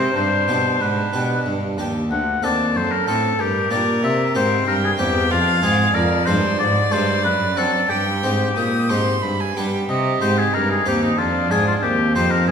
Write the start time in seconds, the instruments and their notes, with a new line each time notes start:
Already playing: harpsichord C3, cello C3, violin C4, oboe C5
0.16 cello G2, harpsichord G2, violin D4, oboe C5
0.48 harpsichord B2 D4 G4, cello B2
0.81 harpsichord G#2, cello G#2, oboe B4
1.13 harpsichord B2 D4 G4, cello B2
1.46 harpsichord G2, cello G2
1.78 harpsichord D#2 D4 G4, cello D#2
2.11 harpsichord D2, cello D2, oboe F#5
2.43 harpsichord D#2 C4 D4 A4, cello D#2, oboe D5
2.75 harpsichord F#2, cello F#2, violin A4, oboe C5
2.92 oboe A#4
3.07 cello A2, harpsichord A2 C4 D4 A4, oboe A4
3.39 harpsichord G2, cello G2, oboe G4, violin A#4
3.71 harpsichord A#2 A#3 D4 G4, cello A#2, oboe D5
4.03 harpsichord C3, cello C3, oboe E5
4.35 harpsichord G#2 A#3 C4 G4, cello G#2, oboe C5
4.67 harpsichord G2, cello G2, oboe A#4, violin G5
4.84 oboe G#4
4.98 harpsichord E2 A#3 C4 G4, cello E2, oboe G4
5.31 harpsichord F2, cello F2, oboe F4, violin F5
5.62 harpsichord G#2 G#3 C4 F4, cello G#2, oboe G#4
5.94 harpsichord F2, cello F2, oboe A#4, violin D5
6.26 harpsichord G2 G#3 D4 F4, cello G2, oboe C5
6.59 harpsichord G#2, cello G#2, oboe D5
6.91 harpsichord G2 G#3 D4 F4, cello G2, oboe C5
7.24 harpsichord F#2, cello F#2, oboe B4
7.57 harpsichord F#3 C4 D4, cello F#3, oboe A4
7.90 harpsichord G2, cello G2, oboe G4, violin G5
8.23 harpsichord G#2 C4 D#4 G4, cello G#2
8.56 harpsichord A#2, cello A#2, violin D#6
8.90 harpsichord G#2 C4 D#4 G4, cello G#2, violin C6
9.22 cello G2, harpsichord G2, violin B5
9.40 violin G#5
9.57 cello G3, harpsichord G3 B3 D4 G4, violin G5
9.89 harpsichord C3, cello C3, violin G4, oboe D#5
10.21 harpsichord G#2 C4 D#4 G4, cello G#2, oboe C5
10.38 oboe G#4
10.54 harpsichord G2, cello G2, violin D#4, oboe A#4
10.71 oboe G#4
10.86 harpsichord D#2 C4 D#4 G4, cello D#2, oboe G4
11.03 oboe D#4
11.18 harpsichord F2, cello F2, violin D4, oboe F4
11.51 cello G#2, harpsichord G#2 D4 G#4, oboe G#4
11.67 oboe F4
11.82 cello D#2, harpsichord D#2, violin C4, oboe G4
12.15 cello F2, harpsichord F2 C4 D#4 G4, oboe C5
12.31 oboe A#4
12.47 harpsichord G2, cello G2, oboe G#4